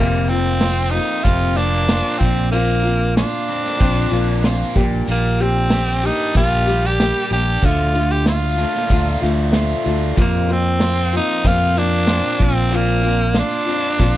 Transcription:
Already playing: fingered electric bass F1, steel-string acoustic guitar F2 C3, tenor saxophone A#3
0.00 steel-string acoustic guitar F3 A#3 C4 F4
0.28 steel-string acoustic guitar F3 A#3 C4 F4, tenor saxophone C4, closed hi-hat
0.61 overdriven electric guitar F4, snare, closed hi-hat
0.91 steel-string acoustic guitar A#3 C4 F4, tenor saxophone D#4, closed hi-hat
0.95 steel-string acoustic guitar F3
1.23 fingered electric bass F1, steel-string acoustic guitar F2 C3 F3 A#3 C4 F4, tenor saxophone F4, kick, closed hi-hat
1.55 steel-string acoustic guitar F3 A#3 C4 F4, tenor saxophone D4, closed hi-hat
1.88 steel-string acoustic guitar F3 A#3 C4 F4, snare, closed hi-hat
2.18 fingered electric bass A#1, overdriven electric guitar A#2, tenor saxophone C4, steel-string acoustic guitar C4 D4 F4, kick, closed hi-hat
2.51 steel-string acoustic guitar A#2 F3 C4 D4 F4, tenor saxophone A#3, closed hi-hat
2.83 steel-string acoustic guitar C4 D4 F4, closed hi-hat
3.17 tenor saxophone D4, overdriven electric guitar F4, snare, closed hi-hat
3.49 overdriven electric guitar C4, closed hi-hat
3.66 snare
3.79 fingered electric bass A#1, steel-string acoustic guitar A#2 F3 C4 D4 F4, kick, closed hi-hat
4.11 fingered electric bass A#1, overdriven electric guitar A#3, steel-string acoustic guitar C4 D4 F4, closed hi-hat
4.42 steel-string acoustic guitar F3 C4 D4 F4, snare, closed hi-hat
4.75 fingered electric bass A#1, steel-string acoustic guitar A#2 G3 A#3 D4 G4, kick, closed hi-hat
5.07 fingered electric bass A#1, overdriven electric guitar A#2, tenor saxophone A#3, closed hi-hat
5.38 tenor saxophone C4, steel-string acoustic guitar D4 G4, closed hi-hat
5.43 steel-string acoustic guitar A#3
5.70 overdriven electric guitar G4, snare, closed hi-hat
6.03 steel-string acoustic guitar A#3 G4, overdriven electric guitar D4, tenor saxophone D#4, closed hi-hat
6.34 fingered electric bass A#1, steel-string acoustic guitar A#2 G3 A#3 D4 G4, tenor saxophone F4, kick, closed hi-hat
6.67 overdriven electric guitar G3, steel-string acoustic guitar A#3 D4 G4, closed hi-hat
6.86 tenor saxophone G4
6.99 steel-string acoustic guitar G3 A#3 D4 G4, snare, closed hi-hat
7.31 fingered electric bass A#1, steel-string acoustic guitar A#3 D4 G4, tenor saxophone G4, closed hi-hat
7.62 fingered electric bass D2, steel-string acoustic guitar D3 F3 A3 D4 F4, tenor saxophone F4, kick, closed hi-hat
7.94 steel-string acoustic guitar A3 D4 F4, closed hi-hat
8.11 tenor saxophone G4
8.26 tenor saxophone F4, overdriven electric guitar F4, snare, closed hi-hat
8.57 steel-string acoustic guitar A3 D4 F4, closed hi-hat
8.75 snare
8.89 fingered electric bass D2, steel-string acoustic guitar D3 F3 A3 D4 F4, kick, closed hi-hat
9.21 fingered electric bass D2, steel-string acoustic guitar A3 D4 F4, closed hi-hat
9.51 steel-string acoustic guitar F3 A3 D4 F4, snare, closed hi-hat
9.84 fingered electric bass D2, steel-string acoustic guitar A3 D4 F4, closed hi-hat
10.16 steel-string acoustic guitar F2 C3 F3 A#3 C4 F4, fingered electric bass F2, kick, closed hi-hat
10.21 tenor saxophone A#3
10.49 steel-string acoustic guitar F3 A#3 C4 F4, tenor saxophone C4, closed hi-hat
10.80 overdriven electric guitar F4, snare, closed hi-hat
11.12 steel-string acoustic guitar F3 A#3 C4 F4, closed hi-hat
11.17 tenor saxophone D#4
11.44 steel-string acoustic guitar F2 C3 F3 A#3 C4 F4, fingered electric bass F2, kick, closed hi-hat
11.48 tenor saxophone F4
11.76 steel-string acoustic guitar F3 A#3 C4 F4, tenor saxophone D4, closed hi-hat
12.07 steel-string acoustic guitar F3 A#3 C4 F4, snare, closed hi-hat
12.39 fingered electric bass A#1, overdriven electric guitar A#2, steel-string acoustic guitar C4 D4 F4, kick, closed hi-hat
12.43 tenor saxophone C4
12.70 steel-string acoustic guitar A#2 F3 C4 D4 F4, closed hi-hat
12.76 tenor saxophone A#3
13.02 steel-string acoustic guitar C4 D4 F4, closed hi-hat
13.34 overdriven electric guitar F4, snare, closed hi-hat
13.39 tenor saxophone D4
13.66 steel-string acoustic guitar C4 D4 F4, closed hi-hat
13.98 fingered electric bass A#1, steel-string acoustic guitar A#2 F3 C4 D4 F4, kick, closed hi-hat

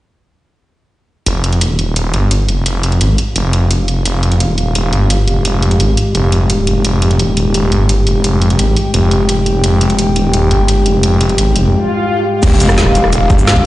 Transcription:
1.26 detuned saw bass F1, analog synth pad G#3 G4 F5, closed hi-hat
1.44 closed hi-hat
1.53 closed hi-hat
1.61 closed hi-hat
1.79 detuned saw bass D#1, closed hi-hat
1.96 closed hi-hat
2.14 detuned saw bass G1, closed hi-hat
2.31 closed hi-hat
2.49 detuned saw bass F1, closed hi-hat
2.66 closed hi-hat
2.83 closed hi-hat
2.92 closed hi-hat
3.01 detuned saw bass G#1, closed hi-hat
3.18 closed hi-hat
3.36 detuned saw bass F1, closed hi-hat
3.53 closed hi-hat
3.71 closed hi-hat
3.88 closed hi-hat
4.05 detuned saw bass F1, closed hi-hat
4.23 closed hi-hat
4.32 closed hi-hat
4.40 closed hi-hat
4.58 detuned saw bass D#1, closed hi-hat
4.75 closed hi-hat
4.93 detuned saw bass G1, closed hi-hat
5.10 closed hi-hat
5.28 detuned saw bass F1, closed hi-hat
5.45 closed hi-hat
5.62 closed hi-hat
5.71 closed hi-hat
5.80 detuned saw bass G#1, closed hi-hat
5.97 closed hi-hat
6.15 detuned saw bass F1, closed hi-hat
6.32 detuned saw bass F1, closed hi-hat
6.50 closed hi-hat
6.67 detuned saw bass F1, closed hi-hat
6.85 detuned saw bass F1, analog synth pad G5, closed hi-hat
7.02 closed hi-hat
7.11 closed hi-hat
7.19 closed hi-hat
7.37 detuned saw bass D#1, closed hi-hat
7.54 closed hi-hat
7.72 detuned saw bass G1, closed hi-hat
7.89 closed hi-hat
8.07 detuned saw bass F1, closed hi-hat
8.24 closed hi-hat
8.42 closed hi-hat
8.50 closed hi-hat
8.59 detuned saw bass G#1, closed hi-hat
8.76 closed hi-hat
8.94 detuned saw bass F1, closed hi-hat
9.11 closed hi-hat
9.29 closed hi-hat
9.46 closed hi-hat
9.64 detuned saw bass F1, closed hi-hat
9.81 closed hi-hat
9.90 closed hi-hat
9.99 closed hi-hat
10.16 detuned saw bass D#1, closed hi-hat
10.34 closed hi-hat
10.51 detuned saw bass G1, closed hi-hat
10.68 closed hi-hat
10.86 detuned saw bass F1, closed hi-hat
11.03 closed hi-hat
11.21 closed hi-hat
11.29 closed hi-hat
11.38 detuned saw bass G#1, closed hi-hat
11.56 detuned saw bass F1, closed hi-hat
11.73 swell
12.43 detuned saw bass F1, analog synth pad G#3 G4 F5, kick, closed hi-hat, crash, impact, cabasa
12.60 closed hi-hat, cabasa
12.69 cross-stick, cabasa
12.78 snare, closed hi-hat, cabasa
12.86 cross-stick
12.95 detuned saw bass D#1, closed hi-hat, cabasa
13.04 cross-stick
13.13 closed hi-hat, cabasa
13.30 detuned saw bass G1, kick, closed hi-hat, cabasa
13.39 cabasa
13.47 snare, closed hi-hat, cabasa
13.56 kick, closed hi-hat

